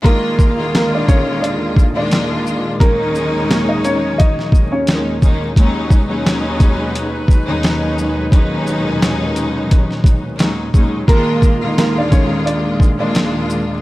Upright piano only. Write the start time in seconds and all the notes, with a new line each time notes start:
0.04 A#3 A#4
0.75 A#3 A#4
0.95 D4 D5
1.08 C#4 C#5
1.42 D4 D5
1.97 D4 D5
2.80 A#3 A#4
3.50 A#3 A#4
3.69 D#4 D#5
3.85 C#4 C#5
4.18 D#4 D#5
4.72 C#4 C#5
11.08 A#3 A#4
11.78 A#3 A#4
11.98 D4 D5
12.11 C#4 C#5
12.46 D4 D5
13.00 D4 D5